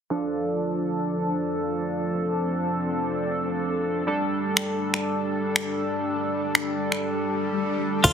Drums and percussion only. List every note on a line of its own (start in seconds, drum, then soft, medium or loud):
4.57 finger snap loud
4.94 finger snap medium
5.56 finger snap loud
6.55 finger snap loud
6.92 finger snap medium
8.04 kick loud
8.04 closed hi-hat medium
8.04 crash loud
8.04 shaker medium